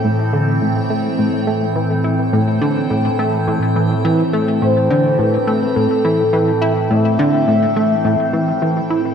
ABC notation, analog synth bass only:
X:1
M:4/4
L:1/8
Q:1/4=105
K:Am
V:1 name="Analog synth bass" clef=bass
A,, D, A,, A, A,, A, E, E | A,, D, A,, A, A,, E, E, A, | A,, D, A,, A, A,, E, E, E | A,, D, A,, A, A,, E, E, E |]